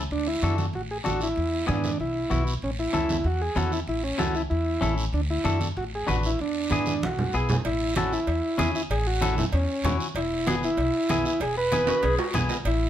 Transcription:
0.11 D2 D4, long guiro
0.27 E4
0.42 F#2 D4 F#4 A4, high conga, short guiro
0.58 high conga, short guiro
0.73 A1 F#4, long guiro
0.91 G#4
1.04 A1 D4 F#4 A4, high conga, short guiro
1.21 E4, short guiro
1.36 E2, long guiro
1.67 G#2 B3 D4 E4 G#4, high conga, short guiro
1.84 high conga, short guiro
2.00 B1 E4, long guiro
2.30 B1 B3 E4 F#4, high conga, short guiro
2.47 short guiro
2.62 A1 C#4, long guiro
2.79 E4
2.93 C#2 C#4 E4 A4, high conga, short guiro
3.09 high conga, short guiro
3.24 E2 F#4, long guiro
3.42 G#4
3.56 E2 C#4 E4 F#4 A4, high conga, short guiro
3.72 E4, short guiro
3.87 A1 E4, long guiro
4.04 C#4
4.18 C#2 C#4 E4 F#4 A4, high conga, short guiro
4.35 E4, short guiro
4.50 E2 E4, long guiro
4.81 A1 C#4 E4 A4, high conga, short guiro
4.98 short guiro
5.13 D2 D4, long guiro
5.30 E4
5.44 F#2 D4 F#4 A4, high conga, short guiro
5.61 high conga, short guiro
5.77 A1 F#4, long guiro
5.95 G#4
6.07 A1 D4 F#4 B4, high conga, short guiro
6.23 E4, short guiro
6.39 E2 D4, long guiro
6.71 G#2 B3 E4 G#4, high conga, short guiro
6.86 high conga, short guiro
7.02 B1 F#4, high conga, long guiro
7.19 low conga
7.33 B1 B3 E4 G#4, short guiro
7.49 low conga, short guiro
7.65 A1 E4, cowbell, long guiro
7.96 C#4 E4 F#4 A4, cowbell, high conga, short guiro
8.13 E4, short guiro
8.27 E2, cowbell, long guiro
8.58 E2 C#4 E4 G#4, cowbell, high conga, short guiro
8.75 E4, short guiro
8.90 A1 G#4, cowbell, long guiro
9.07 F#4
9.21 C#4 E4 A4, cowbell, high conga, short guiro
9.38 E4, low conga, short guiro
9.52 E2 C#4, cowbell, long guiro
9.84 E2 C#4 E4 F#4, cowbell, high conga, low conga, low timbale, short guiro
10.00 short guiro
10.15 E1 E4, cowbell, long guiro
10.47 B3 E4 F#4 G#4, cowbell, high conga, short guiro
10.63 E4, short guiro
10.77 B1, cowbell, long guiro
11.09 B1 B3 E4 G#4, cowbell, high conga, short guiro
11.25 E4, short guiro
11.40 E1 G#4, cowbell, long guiro
11.58 B4
11.72 B3 E4 G#4, cowbell, high conga, short guiro
11.87 F#4, high timbale, short guiro
12.02 B1 G#4, cowbell, high timbale, long guiro
12.19 F#4, low timbale
12.34 B1 B3 E4 G#4, cowbell, high conga, low conga, short guiro
12.49 low timbale, short guiro
12.65 A1 E4, cowbell, long guiro

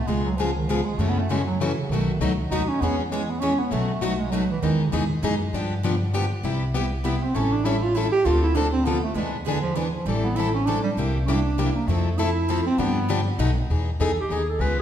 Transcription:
0.07 C#2 C#3 G#3 B3 F4 G#4
0.25 F#3
0.37 C#3 F3 G#3 B3 F4 G#4
0.56 D#3
0.68 C#3 F3 G#3 B3 F4 G#4
0.85 G#3
0.98 F#2 C#3 E3 F#3 A3 C#4 E4 F#4 A4
1.09 B3
1.19 A3
1.29 C#3 E3 F#3 G#3 A3 C#4 E4 F#4 A4
1.47 F#3
1.60 C#3 E3 F#3 A3 C#4 E4 F#4 A4
1.78 C#3
1.89 B1 B2 D#3 F#3 A3 D#4
1.93 F#4 B4
2.19 C#2 B2 F#3 A3 D#4 F#4
2.23 B4
2.51 D#2 B2 F#3 A3 D#4 F#4 B4
2.68 C#4
2.81 E2 E3 G#3 B3 C#4 G#4 C#5
2.98 E3
3.10 E3 G#3 B3 C#4 G#4 C#5
3.29 B3
3.40 E3 G#3 B3 C#4 G#4 C#5
3.59 B3
3.71 B1 B2 F#3 A3 D#4 F#4 B4
4.01 B2 F#3 A3 D#4 F#4 B4
4.19 G#3
4.31 B2 F#3 A3 D#4 F#4 B4
4.51 E3
4.62 E2 D#3 E3 G#3 B3 D#4 G#4
4.92 E2 E3 G#3 B3 D#4 G#4
5.22 F#2 E3 G#3 B3 D#4 G#4
5.53 G2 D3 F3 B3 D4 G4
5.83 D3 F3 B3 D4 G4
6.13 D3 F3 B3 D4 G4
6.43 C2 C3 G3 B3 E4 G4
6.74 C3 G3 B3 E4 G4
7.04 C3 G3 B3 E4 G4
7.23 C4
7.34 A1 E3 G3 C#4 E4 A4
7.53 D4
7.64 E3 G3 C#4 E4 A4
7.83 F4
7.95 E3 G3 C#4 E4 A4
8.12 G4
8.25 D2 D3 F3 A3 C4 D4 F4 A4
8.43 E4
8.55 D3 F3 A3 C4 D4 F4 A4
8.73 C4
8.85 D3 F3 A3 B3 C4 D4 F4 A4
9.04 A3
9.15 E2 E3 G#3 B3 D4 B4
9.19 G#4
9.33 B2
9.45 D3 E3 B3 D4 G#4 B4
9.62 F3
9.75 E3 B3 D4 G#4 B4
9.93 F3
10.05 A1 E3 G3 C4 E4 A4
10.24 B3
10.36 E3 G3 C4 E4 A4
10.55 C#4
10.66 E3 G3 C4 D4 E4 A4
10.83 G3
10.97 C2 C3 G3 A#3 E4 G4
11.26 C3 G3 A#3 D4 E4 G4
11.58 C3 G3 A#3 E4 G4
11.75 A#3
11.87 F2 F3 A3 C4 E4 A4
12.18 F3 C4 E4 A4
12.50 F3 C4 E4 A4
12.66 C4
12.78 G2 D3 F3 B3 D4 G4
13.09 D3 F3 B3 D4 G4
13.38 B1 B2 F#3 A3 D#4 F#4 B4
13.70 E2 E3 B3 D#4 G#4
14.00 E2 E3 B3 D#4 G#4 A4
14.21 G4
14.29 D#2 E3 B3 D#4 G#4
14.50 A4
14.59 C#2 C#3 G#3 B3 F4 G#4 B4

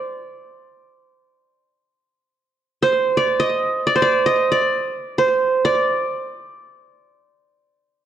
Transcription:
Already playing: C5 D5
2.83 C5
3.17 D5
3.40 D#5
3.87 D5
3.96 C5
4.02 D5
4.26 D#5
4.51 D5
5.18 C5
5.65 D5

